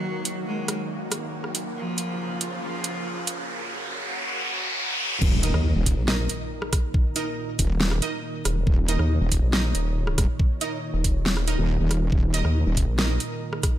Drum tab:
CC |----------------|----------------|----------------|x---------------|
HH |--x---x---x---x-|--x---x---x---x-|----------------|--x---x---x---x-|
SD |------r---r--r--|----------------|----------------|---r----o----rr-|
BD |----------------|----------------|----------------|o-----o-------o-|

CC |----------------|----------------|----------------|----------------|
HH |--x---x---x---x-|--x---x---x---x-|--x---x---x---x-|--x---x---x---x-|
SD |--------or----r-|---r----o----rr-|--------or----r-|---r----o----rr-|
BD |o-----o---------|o-----o-------o-|o-----o---------|o-----o-------o-|